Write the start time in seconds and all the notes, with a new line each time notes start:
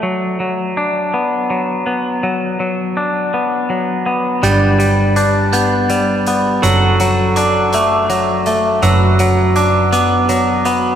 Already playing: D4
0.03 F#3
0.40 F#3
0.77 D4
1.14 B3
1.50 F#3
1.86 B3
2.23 F#3
2.60 F#3
2.97 D4
3.34 B3
3.70 F#3
4.06 B3
4.43 G1 G3 D4 G4 B4 G5 A6, closed hi-hat
4.79 G3, closed hi-hat
5.16 D4 G6, closed hi-hat
5.53 B3 G6, closed hi-hat
5.90 G3, closed hi-hat
6.26 B3, closed hi-hat
6.62 F#1 F#3 F#4 A4 F#5 E6, closed hi-hat
7.00 F#3, closed hi-hat
7.36 D4 D6, closed hi-hat
7.73 A3 D6, closed hi-hat
8.10 F#3, closed hi-hat
8.46 A3, closed hi-hat
8.82 F#1 F#3 F#4 B4 E6, closed hi-hat
9.19 F#3, closed hi-hat
9.56 D4 D6, closed hi-hat
9.92 B3 D6, closed hi-hat
10.29 F#3, closed hi-hat
10.65 B3, closed hi-hat